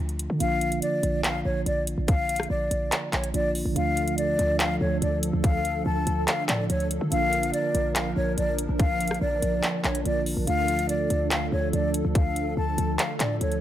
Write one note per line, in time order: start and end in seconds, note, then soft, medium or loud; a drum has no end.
0.00 0.29 D2 loud
0.00 0.35 D3 medium
0.00 0.35 F3 medium
0.00 0.36 A3 medium
0.00 0.37 D4 medium
0.00 0.37 F4 medium
0.09 closed hi-hat soft
0.19 closed hi-hat medium
0.30 0.40 D3 loud
0.38 0.81 A#1 loud
0.38 3.29 D3 medium
0.38 3.30 F3 medium
0.38 3.30 A#3 medium
0.38 3.31 D4 medium
0.38 0.80 F5 loud
0.38 closed hi-hat medium
0.43 3.31 F4 medium
0.61 closed hi-hat medium
0.72 closed hi-hat medium
0.82 1.22 D5 medium
0.82 closed hi-hat medium
1.03 1.44 A#1 loud
1.03 closed hi-hat medium
1.24 1.40 F5 medium
1.24 clap loud
1.24 closed hi-hat medium
1.45 1.65 A#1 loud
1.45 1.61 C#5 medium
1.66 1.96 A#1 loud
1.66 1.82 D5 medium
1.66 closed hi-hat medium
1.87 closed hi-hat medium
1.98 2.48 A#1 loud
2.08 2.48 F5 loud
2.08 kick loud
2.08 closed hi-hat medium
2.29 closed hi-hat medium
2.36 cross-stick medium
2.36 closed hi-hat medium
2.43 closed hi-hat soft
2.50 2.70 A#1 loud
2.50 3.09 D5 medium
2.71 2.91 A#1 loud
2.71 closed hi-hat medium
2.92 clap loud
2.92 closed hi-hat medium
3.13 3.33 A#1 loud
3.13 3.29 C#5 medium
3.13 clap loud
3.13 closed hi-hat medium
3.24 closed hi-hat medium
3.33 3.64 A#1 loud
3.33 3.72 D3 soft
3.33 3.73 F3 soft
3.33 3.76 A#3 soft
3.33 3.76 D4 soft
3.33 3.77 F4 medium
3.33 3.50 D5 loud
3.33 closed hi-hat medium
3.55 open hi-hat medium
3.65 3.76 A#1 loud
3.73 4.36 D2 loud
3.73 7.06 D3 medium
3.73 7.07 F3 medium
3.73 7.08 F3 medium
3.73 7.07 A3 medium
3.73 13.61 D4 medium
3.73 7.08 D4 medium
3.73 7.08 A4 medium
3.73 4.16 F5 loud
3.73 closed hi-hat medium
3.78 7.09 F4 medium
3.97 closed hi-hat medium
4.08 closed hi-hat medium
4.18 4.57 D5 medium
4.18 closed hi-hat medium
4.39 4.79 D2 loud
4.39 closed hi-hat medium
4.60 4.76 F5 medium
4.60 clap loud
4.60 closed hi-hat medium
4.81 5.01 D2 loud
4.81 4.97 C#5 medium
5.02 5.32 D2 loud
5.02 5.18 D5 medium
5.02 closed hi-hat medium
5.23 closed hi-hat medium
5.33 5.84 D2 loud
5.44 5.83 F5 loud
5.44 kick loud
5.44 closed hi-hat medium
5.65 closed hi-hat medium
5.86 6.06 D2 loud
5.86 6.25 A5 medium
6.07 6.27 D2 loud
6.07 closed hi-hat medium
6.28 6.44 F5 medium
6.28 clap loud
6.28 closed hi-hat medium
6.49 6.69 A2 loud
6.49 6.65 D5 medium
6.49 clap loud
6.49 closed hi-hat medium
6.70 7.00 D2 loud
6.70 6.86 C#5 medium
6.70 closed hi-hat medium
6.80 closed hi-hat soft
6.91 closed hi-hat loud
7.01 7.11 D3 loud
7.09 7.52 A#1 loud
7.09 10.00 D3 medium
7.09 10.01 F3 medium
7.09 10.44 F3 medium
7.09 10.01 A#3 medium
7.09 10.02 D4 medium
7.09 10.44 A#4 loud
7.09 7.51 F5 loud
7.09 closed hi-hat medium
7.14 10.03 F4 medium
7.33 closed hi-hat medium
7.43 closed hi-hat medium
7.54 7.93 D5 medium
7.54 closed hi-hat medium
7.75 8.15 A#1 loud
7.75 closed hi-hat medium
7.96 8.12 F5 medium
7.96 clap loud
7.96 closed hi-hat medium
8.16 8.37 A#1 loud
8.16 8.33 C#5 medium
8.38 8.68 A#1 loud
8.38 8.54 D5 medium
8.38 closed hi-hat medium
8.59 closed hi-hat medium
8.69 9.19 A#1 loud
8.80 9.19 F5 loud
8.80 kick loud
8.80 closed hi-hat medium
9.01 closed hi-hat medium
9.07 cross-stick medium
9.07 closed hi-hat medium
9.14 closed hi-hat soft
9.21 9.42 A#1 loud
9.21 9.81 D5 medium
9.42 9.63 A#1 loud
9.42 closed hi-hat medium
9.63 clap loud
9.63 closed hi-hat medium
9.84 10.05 A#1 loud
9.84 10.01 C#5 medium
9.84 clap loud
9.84 closed hi-hat medium
9.95 closed hi-hat medium
10.04 10.36 A#1 loud
10.04 10.43 D3 soft
10.04 10.44 F3 soft
10.04 10.47 A#3 soft
10.04 10.47 D4 soft
10.04 10.48 F4 medium
10.04 10.21 D5 loud
10.04 closed hi-hat medium
10.26 open hi-hat medium
10.37 10.47 A#1 loud
10.44 11.08 D2 loud
10.44 13.61 D3 medium
10.44 13.61 F3 medium
10.44 13.61 A3 medium
10.44 13.61 D4 medium
10.44 13.61 A4 medium
10.44 10.87 F5 loud
10.44 closed hi-hat medium
10.49 13.61 F4 medium
10.68 closed hi-hat medium
10.79 closed hi-hat medium
10.89 11.29 D5 medium
10.89 closed hi-hat medium
11.10 11.51 D2 loud
11.10 closed hi-hat medium
11.31 11.47 F5 medium
11.31 clap loud
11.31 closed hi-hat medium
11.52 11.72 D2 loud
11.52 11.68 C#5 medium
11.73 12.03 D2 loud
11.73 11.89 D5 medium
11.73 closed hi-hat medium
11.94 closed hi-hat medium
12.05 12.55 D2 loud
12.15 12.55 F5 loud
12.15 kick loud
12.15 closed hi-hat medium
12.36 closed hi-hat medium
12.57 12.77 D2 loud
12.57 12.97 A5 medium
12.78 12.98 D2 loud
12.78 closed hi-hat medium
12.99 13.15 F5 medium
12.99 clap loud
12.99 closed hi-hat medium
13.20 13.40 A2 loud
13.20 13.36 D5 medium
13.20 clap loud
13.20 closed hi-hat medium
13.41 13.61 D2 loud
13.41 13.57 C#5 medium
13.41 closed hi-hat medium
13.52 closed hi-hat soft